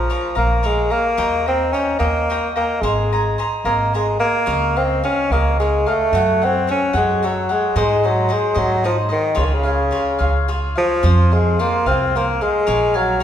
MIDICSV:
0, 0, Header, 1, 4, 480
1, 0, Start_track
1, 0, Key_signature, -5, "major"
1, 0, Tempo, 545951
1, 1044, Time_signature, 6, 3, 24, 8
1, 11635, End_track
2, 0, Start_track
2, 0, Title_t, "Cavaquinho"
2, 0, Program_c, 0, 24
2, 0, Note_on_c, 0, 82, 46
2, 85, Note_on_c, 0, 70, 52
2, 89, Note_off_c, 0, 82, 0
2, 91, Note_on_c, 0, 73, 51
2, 93, Note_on_c, 0, 77, 47
2, 99, Note_on_c, 0, 82, 54
2, 298, Note_off_c, 0, 82, 0
2, 303, Note_off_c, 0, 77, 0
2, 309, Note_off_c, 0, 73, 0
2, 309, Note_on_c, 0, 82, 51
2, 310, Note_off_c, 0, 70, 0
2, 313, Note_on_c, 0, 77, 44
2, 320, Note_on_c, 0, 73, 45
2, 321, Note_on_c, 0, 70, 41
2, 542, Note_off_c, 0, 70, 0
2, 549, Note_off_c, 0, 73, 0
2, 550, Note_off_c, 0, 77, 0
2, 552, Note_on_c, 0, 70, 51
2, 558, Note_off_c, 0, 82, 0
2, 560, Note_on_c, 0, 73, 51
2, 560, Note_on_c, 0, 77, 56
2, 569, Note_on_c, 0, 82, 55
2, 782, Note_off_c, 0, 82, 0
2, 791, Note_off_c, 0, 77, 0
2, 793, Note_on_c, 0, 82, 46
2, 797, Note_off_c, 0, 73, 0
2, 798, Note_off_c, 0, 70, 0
2, 802, Note_on_c, 0, 77, 41
2, 807, Note_on_c, 0, 73, 38
2, 1022, Note_off_c, 0, 73, 0
2, 1029, Note_off_c, 0, 82, 0
2, 1033, Note_on_c, 0, 73, 67
2, 1034, Note_off_c, 0, 77, 0
2, 1037, Note_on_c, 0, 75, 77
2, 1038, Note_on_c, 0, 79, 67
2, 1039, Note_on_c, 0, 82, 71
2, 1274, Note_off_c, 0, 82, 0
2, 1285, Note_on_c, 0, 82, 38
2, 1287, Note_off_c, 0, 79, 0
2, 1288, Note_off_c, 0, 75, 0
2, 1294, Note_off_c, 0, 73, 0
2, 1297, Note_on_c, 0, 79, 39
2, 1298, Note_on_c, 0, 75, 34
2, 1519, Note_off_c, 0, 75, 0
2, 1522, Note_on_c, 0, 73, 48
2, 1524, Note_off_c, 0, 82, 0
2, 1525, Note_off_c, 0, 79, 0
2, 1530, Note_on_c, 0, 75, 61
2, 1535, Note_on_c, 0, 82, 54
2, 1536, Note_on_c, 0, 79, 50
2, 1738, Note_off_c, 0, 82, 0
2, 1743, Note_off_c, 0, 79, 0
2, 1746, Note_off_c, 0, 75, 0
2, 1748, Note_off_c, 0, 73, 0
2, 1749, Note_on_c, 0, 82, 43
2, 1754, Note_on_c, 0, 79, 49
2, 1757, Note_on_c, 0, 75, 52
2, 1759, Note_on_c, 0, 73, 47
2, 2009, Note_off_c, 0, 73, 0
2, 2010, Note_off_c, 0, 75, 0
2, 2010, Note_off_c, 0, 82, 0
2, 2012, Note_off_c, 0, 79, 0
2, 2020, Note_on_c, 0, 73, 49
2, 2020, Note_on_c, 0, 75, 51
2, 2027, Note_on_c, 0, 79, 54
2, 2034, Note_on_c, 0, 82, 59
2, 2237, Note_off_c, 0, 82, 0
2, 2244, Note_off_c, 0, 79, 0
2, 2248, Note_on_c, 0, 82, 41
2, 2250, Note_off_c, 0, 73, 0
2, 2251, Note_off_c, 0, 75, 0
2, 2255, Note_on_c, 0, 79, 41
2, 2260, Note_on_c, 0, 75, 36
2, 2481, Note_off_c, 0, 82, 0
2, 2482, Note_off_c, 0, 75, 0
2, 2484, Note_off_c, 0, 79, 0
2, 2490, Note_on_c, 0, 72, 65
2, 2492, Note_on_c, 0, 80, 62
2, 2493, Note_on_c, 0, 75, 59
2, 2497, Note_on_c, 0, 82, 71
2, 2738, Note_off_c, 0, 82, 0
2, 2739, Note_off_c, 0, 80, 0
2, 2741, Note_off_c, 0, 72, 0
2, 2743, Note_off_c, 0, 75, 0
2, 2748, Note_on_c, 0, 82, 42
2, 2749, Note_on_c, 0, 80, 46
2, 2757, Note_on_c, 0, 75, 34
2, 2968, Note_off_c, 0, 75, 0
2, 2971, Note_off_c, 0, 80, 0
2, 2973, Note_on_c, 0, 72, 47
2, 2977, Note_off_c, 0, 82, 0
2, 2979, Note_on_c, 0, 75, 46
2, 2982, Note_on_c, 0, 80, 53
2, 2987, Note_on_c, 0, 82, 59
2, 3200, Note_off_c, 0, 82, 0
2, 3201, Note_off_c, 0, 80, 0
2, 3207, Note_off_c, 0, 72, 0
2, 3210, Note_off_c, 0, 75, 0
2, 3210, Note_on_c, 0, 82, 53
2, 3211, Note_on_c, 0, 80, 48
2, 3223, Note_on_c, 0, 72, 43
2, 3223, Note_on_c, 0, 75, 46
2, 3449, Note_off_c, 0, 72, 0
2, 3457, Note_off_c, 0, 75, 0
2, 3458, Note_off_c, 0, 80, 0
2, 3460, Note_on_c, 0, 72, 41
2, 3463, Note_off_c, 0, 82, 0
2, 3468, Note_on_c, 0, 75, 44
2, 3469, Note_on_c, 0, 80, 48
2, 3473, Note_on_c, 0, 82, 58
2, 3677, Note_off_c, 0, 82, 0
2, 3685, Note_off_c, 0, 80, 0
2, 3687, Note_on_c, 0, 82, 39
2, 3693, Note_off_c, 0, 75, 0
2, 3696, Note_on_c, 0, 80, 42
2, 3698, Note_off_c, 0, 72, 0
2, 3704, Note_on_c, 0, 75, 36
2, 3919, Note_off_c, 0, 75, 0
2, 3921, Note_on_c, 0, 68, 61
2, 3924, Note_off_c, 0, 82, 0
2, 3926, Note_off_c, 0, 80, 0
2, 3927, Note_on_c, 0, 73, 73
2, 3928, Note_on_c, 0, 77, 78
2, 3930, Note_on_c, 0, 75, 72
2, 4175, Note_off_c, 0, 77, 0
2, 4181, Note_off_c, 0, 75, 0
2, 4182, Note_off_c, 0, 73, 0
2, 4185, Note_on_c, 0, 77, 34
2, 4187, Note_off_c, 0, 68, 0
2, 4191, Note_on_c, 0, 75, 40
2, 4192, Note_on_c, 0, 73, 37
2, 4417, Note_off_c, 0, 73, 0
2, 4420, Note_off_c, 0, 75, 0
2, 4425, Note_off_c, 0, 77, 0
2, 4426, Note_on_c, 0, 68, 42
2, 4427, Note_on_c, 0, 73, 44
2, 4431, Note_on_c, 0, 75, 52
2, 4436, Note_on_c, 0, 77, 51
2, 4662, Note_off_c, 0, 68, 0
2, 4663, Note_off_c, 0, 73, 0
2, 4664, Note_off_c, 0, 77, 0
2, 4665, Note_off_c, 0, 75, 0
2, 4675, Note_on_c, 0, 77, 48
2, 4681, Note_on_c, 0, 73, 45
2, 4682, Note_on_c, 0, 75, 53
2, 4686, Note_on_c, 0, 68, 40
2, 4911, Note_off_c, 0, 68, 0
2, 4915, Note_off_c, 0, 73, 0
2, 4922, Note_on_c, 0, 68, 52
2, 4926, Note_off_c, 0, 77, 0
2, 4926, Note_on_c, 0, 73, 55
2, 4929, Note_off_c, 0, 75, 0
2, 4936, Note_on_c, 0, 77, 53
2, 4939, Note_on_c, 0, 75, 50
2, 5145, Note_off_c, 0, 77, 0
2, 5154, Note_off_c, 0, 68, 0
2, 5155, Note_on_c, 0, 77, 41
2, 5156, Note_off_c, 0, 73, 0
2, 5157, Note_off_c, 0, 75, 0
2, 5167, Note_on_c, 0, 73, 37
2, 5167, Note_on_c, 0, 75, 36
2, 5386, Note_off_c, 0, 77, 0
2, 5388, Note_on_c, 0, 66, 68
2, 5392, Note_off_c, 0, 73, 0
2, 5392, Note_off_c, 0, 75, 0
2, 5401, Note_on_c, 0, 69, 61
2, 5404, Note_on_c, 0, 73, 75
2, 5407, Note_on_c, 0, 78, 80
2, 5631, Note_off_c, 0, 78, 0
2, 5640, Note_off_c, 0, 73, 0
2, 5641, Note_off_c, 0, 66, 0
2, 5642, Note_on_c, 0, 78, 38
2, 5645, Note_off_c, 0, 69, 0
2, 5651, Note_on_c, 0, 73, 43
2, 5656, Note_on_c, 0, 69, 34
2, 5865, Note_off_c, 0, 69, 0
2, 5867, Note_on_c, 0, 66, 48
2, 5868, Note_off_c, 0, 73, 0
2, 5869, Note_off_c, 0, 78, 0
2, 5875, Note_on_c, 0, 69, 51
2, 5878, Note_on_c, 0, 73, 58
2, 5879, Note_on_c, 0, 78, 59
2, 6085, Note_off_c, 0, 78, 0
2, 6087, Note_off_c, 0, 73, 0
2, 6090, Note_off_c, 0, 66, 0
2, 6091, Note_off_c, 0, 69, 0
2, 6095, Note_on_c, 0, 78, 61
2, 6097, Note_on_c, 0, 73, 52
2, 6101, Note_on_c, 0, 66, 39
2, 6102, Note_on_c, 0, 69, 45
2, 6342, Note_off_c, 0, 66, 0
2, 6350, Note_off_c, 0, 69, 0
2, 6352, Note_off_c, 0, 78, 0
2, 6353, Note_off_c, 0, 73, 0
2, 6353, Note_on_c, 0, 66, 54
2, 6360, Note_on_c, 0, 69, 61
2, 6365, Note_on_c, 0, 73, 58
2, 6367, Note_on_c, 0, 78, 60
2, 6576, Note_off_c, 0, 78, 0
2, 6580, Note_off_c, 0, 73, 0
2, 6585, Note_off_c, 0, 66, 0
2, 6586, Note_on_c, 0, 78, 46
2, 6589, Note_off_c, 0, 69, 0
2, 6591, Note_on_c, 0, 73, 43
2, 6603, Note_on_c, 0, 69, 37
2, 6816, Note_off_c, 0, 78, 0
2, 6817, Note_off_c, 0, 69, 0
2, 6818, Note_off_c, 0, 73, 0
2, 6819, Note_on_c, 0, 63, 69
2, 6821, Note_on_c, 0, 68, 71
2, 6825, Note_on_c, 0, 75, 71
2, 6826, Note_on_c, 0, 72, 80
2, 7054, Note_off_c, 0, 75, 0
2, 7063, Note_off_c, 0, 68, 0
2, 7063, Note_off_c, 0, 72, 0
2, 7064, Note_on_c, 0, 75, 50
2, 7069, Note_off_c, 0, 63, 0
2, 7074, Note_on_c, 0, 68, 39
2, 7074, Note_on_c, 0, 72, 45
2, 7285, Note_off_c, 0, 68, 0
2, 7285, Note_on_c, 0, 63, 55
2, 7287, Note_off_c, 0, 72, 0
2, 7292, Note_off_c, 0, 75, 0
2, 7295, Note_on_c, 0, 68, 57
2, 7297, Note_on_c, 0, 72, 56
2, 7302, Note_on_c, 0, 75, 59
2, 7502, Note_off_c, 0, 75, 0
2, 7510, Note_off_c, 0, 63, 0
2, 7510, Note_off_c, 0, 68, 0
2, 7510, Note_off_c, 0, 72, 0
2, 7512, Note_on_c, 0, 75, 63
2, 7520, Note_on_c, 0, 63, 52
2, 7520, Note_on_c, 0, 68, 51
2, 7520, Note_on_c, 0, 72, 55
2, 7761, Note_off_c, 0, 63, 0
2, 7764, Note_off_c, 0, 68, 0
2, 7767, Note_off_c, 0, 72, 0
2, 7770, Note_off_c, 0, 75, 0
2, 7771, Note_on_c, 0, 63, 55
2, 7774, Note_on_c, 0, 68, 51
2, 7778, Note_on_c, 0, 72, 66
2, 7782, Note_on_c, 0, 75, 71
2, 7980, Note_off_c, 0, 75, 0
2, 7988, Note_off_c, 0, 72, 0
2, 7990, Note_on_c, 0, 75, 41
2, 7999, Note_on_c, 0, 72, 43
2, 8000, Note_off_c, 0, 68, 0
2, 8004, Note_off_c, 0, 63, 0
2, 8010, Note_on_c, 0, 68, 38
2, 8207, Note_off_c, 0, 68, 0
2, 8218, Note_on_c, 0, 65, 72
2, 8218, Note_on_c, 0, 68, 64
2, 8220, Note_off_c, 0, 72, 0
2, 8222, Note_off_c, 0, 75, 0
2, 8224, Note_on_c, 0, 73, 72
2, 8226, Note_on_c, 0, 77, 73
2, 8459, Note_off_c, 0, 77, 0
2, 8470, Note_off_c, 0, 73, 0
2, 8470, Note_on_c, 0, 77, 45
2, 8478, Note_off_c, 0, 68, 0
2, 8480, Note_on_c, 0, 73, 40
2, 8484, Note_off_c, 0, 65, 0
2, 8489, Note_on_c, 0, 68, 41
2, 8710, Note_off_c, 0, 68, 0
2, 8711, Note_on_c, 0, 65, 49
2, 8712, Note_off_c, 0, 73, 0
2, 8714, Note_off_c, 0, 77, 0
2, 8721, Note_on_c, 0, 68, 48
2, 8723, Note_on_c, 0, 73, 49
2, 8725, Note_on_c, 0, 77, 58
2, 8945, Note_off_c, 0, 77, 0
2, 8949, Note_off_c, 0, 68, 0
2, 8951, Note_off_c, 0, 73, 0
2, 8954, Note_off_c, 0, 65, 0
2, 8956, Note_on_c, 0, 77, 52
2, 8959, Note_on_c, 0, 68, 43
2, 8961, Note_on_c, 0, 73, 46
2, 8968, Note_on_c, 0, 65, 42
2, 9205, Note_off_c, 0, 65, 0
2, 9208, Note_off_c, 0, 68, 0
2, 9213, Note_off_c, 0, 73, 0
2, 9216, Note_on_c, 0, 65, 61
2, 9217, Note_off_c, 0, 77, 0
2, 9218, Note_on_c, 0, 68, 64
2, 9223, Note_on_c, 0, 73, 53
2, 9228, Note_on_c, 0, 77, 56
2, 9445, Note_off_c, 0, 77, 0
2, 9453, Note_off_c, 0, 65, 0
2, 9455, Note_off_c, 0, 68, 0
2, 9455, Note_on_c, 0, 77, 39
2, 9457, Note_off_c, 0, 73, 0
2, 9466, Note_on_c, 0, 73, 43
2, 9474, Note_on_c, 0, 68, 38
2, 9685, Note_off_c, 0, 68, 0
2, 9691, Note_off_c, 0, 77, 0
2, 9696, Note_off_c, 0, 73, 0
2, 9696, Note_on_c, 0, 68, 74
2, 9699, Note_on_c, 0, 65, 73
2, 9705, Note_on_c, 0, 72, 78
2, 9706, Note_on_c, 0, 77, 73
2, 9935, Note_off_c, 0, 77, 0
2, 9944, Note_off_c, 0, 72, 0
2, 9946, Note_on_c, 0, 77, 43
2, 9949, Note_off_c, 0, 68, 0
2, 9953, Note_off_c, 0, 65, 0
2, 9955, Note_on_c, 0, 72, 45
2, 9960, Note_on_c, 0, 68, 33
2, 10182, Note_off_c, 0, 77, 0
2, 10186, Note_off_c, 0, 68, 0
2, 10187, Note_off_c, 0, 72, 0
2, 10193, Note_on_c, 0, 65, 58
2, 10196, Note_on_c, 0, 68, 59
2, 10197, Note_on_c, 0, 77, 61
2, 10199, Note_on_c, 0, 72, 52
2, 10419, Note_off_c, 0, 77, 0
2, 10422, Note_off_c, 0, 65, 0
2, 10424, Note_off_c, 0, 68, 0
2, 10425, Note_off_c, 0, 72, 0
2, 10430, Note_on_c, 0, 77, 62
2, 10439, Note_on_c, 0, 72, 53
2, 10442, Note_on_c, 0, 68, 47
2, 10444, Note_on_c, 0, 65, 51
2, 10675, Note_off_c, 0, 65, 0
2, 10680, Note_off_c, 0, 68, 0
2, 10680, Note_off_c, 0, 77, 0
2, 10684, Note_off_c, 0, 72, 0
2, 10685, Note_on_c, 0, 65, 54
2, 10691, Note_on_c, 0, 68, 46
2, 10696, Note_on_c, 0, 72, 52
2, 10697, Note_on_c, 0, 77, 64
2, 10902, Note_off_c, 0, 77, 0
2, 10905, Note_off_c, 0, 72, 0
2, 10910, Note_off_c, 0, 68, 0
2, 10911, Note_off_c, 0, 65, 0
2, 10912, Note_on_c, 0, 77, 51
2, 10915, Note_on_c, 0, 72, 45
2, 10920, Note_on_c, 0, 68, 36
2, 11127, Note_off_c, 0, 77, 0
2, 11134, Note_off_c, 0, 72, 0
2, 11136, Note_on_c, 0, 70, 64
2, 11138, Note_on_c, 0, 77, 74
2, 11139, Note_off_c, 0, 68, 0
2, 11142, Note_on_c, 0, 73, 74
2, 11147, Note_on_c, 0, 80, 86
2, 11367, Note_off_c, 0, 80, 0
2, 11378, Note_on_c, 0, 80, 49
2, 11380, Note_off_c, 0, 77, 0
2, 11381, Note_off_c, 0, 73, 0
2, 11389, Note_off_c, 0, 70, 0
2, 11390, Note_on_c, 0, 77, 40
2, 11391, Note_on_c, 0, 73, 37
2, 11597, Note_off_c, 0, 73, 0
2, 11604, Note_off_c, 0, 77, 0
2, 11607, Note_on_c, 0, 70, 56
2, 11608, Note_on_c, 0, 73, 60
2, 11609, Note_off_c, 0, 80, 0
2, 11635, Note_off_c, 0, 70, 0
2, 11635, Note_off_c, 0, 73, 0
2, 11635, End_track
3, 0, Start_track
3, 0, Title_t, "Bassoon"
3, 0, Program_c, 1, 70
3, 0, Note_on_c, 1, 53, 74
3, 297, Note_off_c, 1, 53, 0
3, 331, Note_on_c, 1, 58, 76
3, 579, Note_on_c, 1, 56, 82
3, 592, Note_off_c, 1, 58, 0
3, 803, Note_on_c, 1, 58, 103
3, 816, Note_off_c, 1, 56, 0
3, 1295, Note_off_c, 1, 58, 0
3, 1299, Note_on_c, 1, 60, 83
3, 1515, Note_on_c, 1, 61, 72
3, 1528, Note_off_c, 1, 60, 0
3, 1743, Note_off_c, 1, 61, 0
3, 1748, Note_on_c, 1, 58, 82
3, 2207, Note_off_c, 1, 58, 0
3, 2251, Note_on_c, 1, 58, 77
3, 2471, Note_on_c, 1, 56, 66
3, 2485, Note_off_c, 1, 58, 0
3, 2973, Note_off_c, 1, 56, 0
3, 3208, Note_on_c, 1, 58, 67
3, 3448, Note_off_c, 1, 58, 0
3, 3474, Note_on_c, 1, 56, 65
3, 3684, Note_off_c, 1, 56, 0
3, 3689, Note_on_c, 1, 58, 91
3, 4192, Note_on_c, 1, 60, 81
3, 4205, Note_off_c, 1, 58, 0
3, 4428, Note_off_c, 1, 60, 0
3, 4436, Note_on_c, 1, 61, 77
3, 4674, Note_on_c, 1, 58, 90
3, 4687, Note_off_c, 1, 61, 0
3, 4914, Note_off_c, 1, 58, 0
3, 4919, Note_on_c, 1, 56, 73
3, 5168, Note_on_c, 1, 57, 91
3, 5181, Note_off_c, 1, 56, 0
3, 5665, Note_on_c, 1, 60, 80
3, 5679, Note_off_c, 1, 57, 0
3, 5884, Note_off_c, 1, 60, 0
3, 5897, Note_on_c, 1, 61, 83
3, 6100, Note_off_c, 1, 61, 0
3, 6126, Note_on_c, 1, 56, 69
3, 6378, Note_on_c, 1, 54, 66
3, 6391, Note_off_c, 1, 56, 0
3, 6610, Note_on_c, 1, 56, 78
3, 6623, Note_off_c, 1, 54, 0
3, 6826, Note_off_c, 1, 56, 0
3, 6831, Note_on_c, 1, 56, 86
3, 7084, Note_on_c, 1, 54, 77
3, 7097, Note_off_c, 1, 56, 0
3, 7321, Note_on_c, 1, 56, 75
3, 7334, Note_off_c, 1, 54, 0
3, 7547, Note_on_c, 1, 54, 81
3, 7560, Note_off_c, 1, 56, 0
3, 7776, Note_off_c, 1, 54, 0
3, 7781, Note_on_c, 1, 53, 66
3, 7884, Note_off_c, 1, 53, 0
3, 8017, Note_on_c, 1, 51, 85
3, 8256, Note_on_c, 1, 49, 68
3, 8269, Note_off_c, 1, 51, 0
3, 8311, Note_on_c, 1, 51, 53
3, 8325, Note_off_c, 1, 49, 0
3, 8392, Note_on_c, 1, 49, 69
3, 8405, Note_off_c, 1, 51, 0
3, 9233, Note_off_c, 1, 49, 0
3, 9472, Note_on_c, 1, 53, 91
3, 9964, Note_on_c, 1, 56, 77
3, 9977, Note_off_c, 1, 53, 0
3, 10200, Note_on_c, 1, 58, 80
3, 10213, Note_off_c, 1, 56, 0
3, 10437, Note_on_c, 1, 60, 88
3, 10450, Note_off_c, 1, 58, 0
3, 10690, Note_on_c, 1, 58, 74
3, 10703, Note_off_c, 1, 60, 0
3, 10917, Note_on_c, 1, 56, 94
3, 10931, Note_off_c, 1, 58, 0
3, 11398, Note_on_c, 1, 54, 82
3, 11411, Note_off_c, 1, 56, 0
3, 11624, Note_off_c, 1, 54, 0
3, 11635, End_track
4, 0, Start_track
4, 0, Title_t, "Upright bass"
4, 0, Program_c, 2, 32
4, 320, Note_on_c, 2, 34, 60
4, 789, Note_off_c, 2, 34, 0
4, 1039, Note_on_c, 2, 39, 82
4, 1508, Note_off_c, 2, 39, 0
4, 1757, Note_on_c, 2, 39, 60
4, 2226, Note_off_c, 2, 39, 0
4, 2476, Note_on_c, 2, 32, 74
4, 2949, Note_off_c, 2, 32, 0
4, 3204, Note_on_c, 2, 32, 64
4, 3679, Note_off_c, 2, 32, 0
4, 3933, Note_on_c, 2, 37, 80
4, 4407, Note_off_c, 2, 37, 0
4, 4662, Note_on_c, 2, 37, 78
4, 5131, Note_off_c, 2, 37, 0
4, 5384, Note_on_c, 2, 42, 80
4, 5851, Note_off_c, 2, 42, 0
4, 6101, Note_on_c, 2, 42, 76
4, 6566, Note_off_c, 2, 42, 0
4, 6820, Note_on_c, 2, 44, 85
4, 7280, Note_off_c, 2, 44, 0
4, 7527, Note_on_c, 2, 44, 74
4, 7991, Note_off_c, 2, 44, 0
4, 8236, Note_on_c, 2, 37, 77
4, 8707, Note_off_c, 2, 37, 0
4, 8969, Note_on_c, 2, 37, 64
4, 9440, Note_off_c, 2, 37, 0
4, 9701, Note_on_c, 2, 41, 84
4, 10170, Note_off_c, 2, 41, 0
4, 10427, Note_on_c, 2, 36, 75
4, 10891, Note_off_c, 2, 36, 0
4, 11146, Note_on_c, 2, 34, 80
4, 11607, Note_off_c, 2, 34, 0
4, 11635, End_track
0, 0, End_of_file